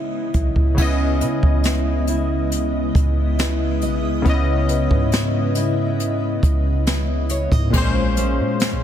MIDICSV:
0, 0, Header, 1, 6, 480
1, 0, Start_track
1, 0, Tempo, 869565
1, 430, Time_signature, 4, 2, 24, 8
1, 4877, End_track
2, 0, Start_track
2, 0, Title_t, "Nylon-string guitar"
2, 0, Program_c, 0, 24
2, 0, Note_on_c, 0, 61, 87
2, 0, Note_on_c, 0, 64, 59
2, 0, Note_on_c, 0, 71, 65
2, 0, Note_on_c, 0, 75, 69
2, 428, Note_off_c, 0, 61, 0
2, 431, Note_on_c, 0, 61, 82
2, 447, Note_off_c, 0, 75, 0
2, 667, Note_off_c, 0, 71, 0
2, 670, Note_on_c, 0, 71, 65
2, 906, Note_off_c, 0, 71, 0
2, 907, Note_off_c, 0, 64, 0
2, 910, Note_on_c, 0, 64, 63
2, 913, Note_on_c, 0, 71, 63
2, 916, Note_on_c, 0, 75, 72
2, 1143, Note_off_c, 0, 64, 0
2, 1150, Note_on_c, 0, 64, 58
2, 1864, Note_off_c, 0, 64, 0
2, 1867, Note_off_c, 0, 71, 0
2, 1871, Note_off_c, 0, 75, 0
2, 1871, Note_on_c, 0, 64, 61
2, 1874, Note_on_c, 0, 71, 61
2, 1877, Note_on_c, 0, 75, 67
2, 2105, Note_off_c, 0, 75, 0
2, 2111, Note_on_c, 0, 75, 70
2, 2348, Note_off_c, 0, 61, 0
2, 2351, Note_on_c, 0, 61, 82
2, 2583, Note_off_c, 0, 71, 0
2, 2590, Note_on_c, 0, 71, 63
2, 2823, Note_off_c, 0, 64, 0
2, 2827, Note_off_c, 0, 71, 0
2, 2829, Note_on_c, 0, 64, 68
2, 2831, Note_off_c, 0, 75, 0
2, 2833, Note_on_c, 0, 71, 65
2, 2836, Note_on_c, 0, 75, 70
2, 3065, Note_off_c, 0, 64, 0
2, 3071, Note_on_c, 0, 64, 63
2, 3784, Note_off_c, 0, 64, 0
2, 3787, Note_off_c, 0, 71, 0
2, 3790, Note_off_c, 0, 75, 0
2, 3790, Note_on_c, 0, 64, 60
2, 3794, Note_on_c, 0, 71, 62
2, 3796, Note_on_c, 0, 75, 69
2, 4029, Note_off_c, 0, 75, 0
2, 4031, Note_on_c, 0, 73, 67
2, 4152, Note_off_c, 0, 73, 0
2, 4152, Note_on_c, 0, 75, 54
2, 4272, Note_on_c, 0, 58, 90
2, 4273, Note_off_c, 0, 71, 0
2, 4275, Note_on_c, 0, 72, 76
2, 4292, Note_off_c, 0, 61, 0
2, 4318, Note_off_c, 0, 64, 0
2, 4319, Note_off_c, 0, 75, 0
2, 4511, Note_off_c, 0, 72, 0
2, 4511, Note_on_c, 0, 61, 63
2, 4514, Note_on_c, 0, 68, 66
2, 4517, Note_on_c, 0, 72, 75
2, 4750, Note_off_c, 0, 61, 0
2, 4752, Note_on_c, 0, 61, 64
2, 4877, Note_off_c, 0, 58, 0
2, 4877, Note_off_c, 0, 61, 0
2, 4877, Note_off_c, 0, 68, 0
2, 4877, Note_off_c, 0, 72, 0
2, 4877, End_track
3, 0, Start_track
3, 0, Title_t, "Synth keys"
3, 0, Program_c, 1, 88
3, 0, Control_c, 1, 64, 127
3, 0, Note_on_c, 1, 49, 78
3, 0, Note_on_c, 1, 59, 71
3, 0, Note_on_c, 1, 64, 65
3, 0, Note_on_c, 1, 75, 80
3, 399, Note_off_c, 1, 49, 0
3, 405, Note_off_c, 1, 59, 0
3, 411, Note_on_c, 1, 49, 73
3, 412, Note_off_c, 1, 64, 0
3, 419, Note_off_c, 1, 75, 0
3, 424, Note_on_c, 1, 59, 66
3, 437, Control_c, 1, 64, 0
3, 438, Note_on_c, 1, 64, 70
3, 451, Note_on_c, 1, 75, 83
3, 545, Control_c, 1, 64, 127
3, 2319, Note_off_c, 1, 49, 0
3, 2325, Note_off_c, 1, 59, 0
3, 2330, Note_on_c, 1, 49, 81
3, 2332, Note_off_c, 1, 64, 0
3, 2338, Note_off_c, 1, 75, 0
3, 2343, Note_on_c, 1, 59, 74
3, 2357, Note_on_c, 1, 64, 66
3, 2370, Note_on_c, 1, 75, 86
3, 4238, Note_off_c, 1, 49, 0
3, 4244, Note_off_c, 1, 59, 0
3, 4251, Note_off_c, 1, 64, 0
3, 4251, Note_on_c, 1, 46, 74
3, 4258, Note_off_c, 1, 75, 0
3, 4265, Note_on_c, 1, 56, 71
3, 4277, Control_c, 1, 64, 0
3, 4278, Note_on_c, 1, 60, 59
3, 4291, Note_on_c, 1, 72, 91
3, 4310, Note_off_c, 1, 60, 0
3, 4314, Note_on_c, 1, 61, 68
3, 4369, Control_c, 1, 64, 127
3, 4877, Note_off_c, 1, 46, 0
3, 4877, Note_off_c, 1, 56, 0
3, 4877, Note_off_c, 1, 61, 0
3, 4877, Note_off_c, 1, 72, 0
3, 4877, End_track
4, 0, Start_track
4, 0, Title_t, "Ambient pad"
4, 0, Program_c, 2, 92
4, 0, Note_on_c, 2, 49, 78
4, 0, Note_on_c, 2, 56, 76
4, 0, Note_on_c, 2, 59, 74
4, 0, Note_on_c, 2, 64, 93
4, 0, Note_on_c, 2, 75, 74
4, 408, Note_off_c, 2, 56, 0
4, 408, Note_off_c, 2, 59, 0
4, 408, Note_off_c, 2, 64, 0
4, 408, Note_off_c, 2, 75, 0
4, 409, Note_off_c, 2, 49, 0
4, 429, Note_on_c, 2, 56, 76
4, 430, Note_on_c, 2, 49, 85
4, 430, Note_on_c, 2, 59, 79
4, 430, Note_on_c, 2, 75, 75
4, 431, Note_on_c, 2, 64, 93
4, 4248, Note_off_c, 2, 49, 0
4, 4248, Note_off_c, 2, 56, 0
4, 4248, Note_off_c, 2, 59, 0
4, 4248, Note_off_c, 2, 64, 0
4, 4248, Note_off_c, 2, 75, 0
4, 4877, End_track
5, 0, Start_track
5, 0, Title_t, "808-style bass"
5, 0, Program_c, 3, 38
5, 190, Note_on_c, 3, 35, 96
5, 305, Note_off_c, 3, 35, 0
5, 310, Note_on_c, 3, 37, 96
5, 425, Note_off_c, 3, 37, 0
5, 431, Note_on_c, 3, 37, 99
5, 673, Note_on_c, 3, 49, 98
5, 681, Note_off_c, 3, 37, 0
5, 785, Note_off_c, 3, 49, 0
5, 790, Note_on_c, 3, 37, 98
5, 1608, Note_off_c, 3, 37, 0
5, 1630, Note_on_c, 3, 37, 100
5, 2112, Note_on_c, 3, 35, 92
5, 2121, Note_off_c, 3, 37, 0
5, 2232, Note_on_c, 3, 37, 91
5, 2240, Note_off_c, 3, 35, 0
5, 2345, Note_off_c, 3, 37, 0
5, 2351, Note_on_c, 3, 37, 103
5, 2696, Note_off_c, 3, 37, 0
5, 2710, Note_on_c, 3, 44, 102
5, 3528, Note_off_c, 3, 44, 0
5, 3550, Note_on_c, 3, 37, 99
5, 4128, Note_off_c, 3, 37, 0
5, 4150, Note_on_c, 3, 44, 100
5, 4265, Note_off_c, 3, 44, 0
5, 4272, Note_on_c, 3, 34, 100
5, 4633, Note_on_c, 3, 46, 101
5, 4641, Note_off_c, 3, 34, 0
5, 4813, Note_on_c, 3, 34, 98
5, 4822, Note_off_c, 3, 46, 0
5, 4877, Note_off_c, 3, 34, 0
5, 4877, End_track
6, 0, Start_track
6, 0, Title_t, "Drums"
6, 186, Note_on_c, 9, 42, 60
6, 189, Note_on_c, 9, 36, 92
6, 242, Note_off_c, 9, 42, 0
6, 245, Note_off_c, 9, 36, 0
6, 308, Note_on_c, 9, 36, 84
6, 363, Note_off_c, 9, 36, 0
6, 429, Note_on_c, 9, 49, 93
6, 430, Note_on_c, 9, 36, 112
6, 484, Note_off_c, 9, 49, 0
6, 485, Note_off_c, 9, 36, 0
6, 667, Note_on_c, 9, 42, 68
6, 722, Note_off_c, 9, 42, 0
6, 789, Note_on_c, 9, 36, 93
6, 844, Note_off_c, 9, 36, 0
6, 903, Note_on_c, 9, 42, 70
6, 913, Note_on_c, 9, 38, 107
6, 958, Note_off_c, 9, 42, 0
6, 969, Note_off_c, 9, 38, 0
6, 1144, Note_on_c, 9, 42, 72
6, 1199, Note_off_c, 9, 42, 0
6, 1390, Note_on_c, 9, 42, 72
6, 1445, Note_off_c, 9, 42, 0
6, 1628, Note_on_c, 9, 36, 98
6, 1632, Note_on_c, 9, 42, 65
6, 1684, Note_off_c, 9, 36, 0
6, 1687, Note_off_c, 9, 42, 0
6, 1870, Note_on_c, 9, 42, 71
6, 1875, Note_on_c, 9, 38, 123
6, 1925, Note_off_c, 9, 42, 0
6, 1930, Note_off_c, 9, 38, 0
6, 2105, Note_on_c, 9, 42, 62
6, 2160, Note_off_c, 9, 42, 0
6, 2349, Note_on_c, 9, 42, 63
6, 2350, Note_on_c, 9, 36, 106
6, 2405, Note_off_c, 9, 36, 0
6, 2405, Note_off_c, 9, 42, 0
6, 2588, Note_on_c, 9, 42, 71
6, 2643, Note_off_c, 9, 42, 0
6, 2709, Note_on_c, 9, 36, 87
6, 2764, Note_off_c, 9, 36, 0
6, 2825, Note_on_c, 9, 42, 66
6, 2835, Note_on_c, 9, 38, 112
6, 2880, Note_off_c, 9, 42, 0
6, 2890, Note_off_c, 9, 38, 0
6, 3064, Note_on_c, 9, 42, 73
6, 3119, Note_off_c, 9, 42, 0
6, 3311, Note_on_c, 9, 42, 73
6, 3366, Note_off_c, 9, 42, 0
6, 3549, Note_on_c, 9, 36, 99
6, 3551, Note_on_c, 9, 42, 65
6, 3604, Note_off_c, 9, 36, 0
6, 3606, Note_off_c, 9, 42, 0
6, 3790, Note_on_c, 9, 42, 69
6, 3794, Note_on_c, 9, 38, 127
6, 3845, Note_off_c, 9, 42, 0
6, 3850, Note_off_c, 9, 38, 0
6, 4026, Note_on_c, 9, 42, 63
6, 4081, Note_off_c, 9, 42, 0
6, 4149, Note_on_c, 9, 36, 89
6, 4204, Note_off_c, 9, 36, 0
6, 4270, Note_on_c, 9, 36, 115
6, 4270, Note_on_c, 9, 49, 99
6, 4326, Note_off_c, 9, 36, 0
6, 4326, Note_off_c, 9, 49, 0
6, 4509, Note_on_c, 9, 42, 78
6, 4564, Note_off_c, 9, 42, 0
6, 4746, Note_on_c, 9, 42, 73
6, 4756, Note_on_c, 9, 38, 119
6, 4801, Note_off_c, 9, 42, 0
6, 4811, Note_off_c, 9, 38, 0
6, 4877, End_track
0, 0, End_of_file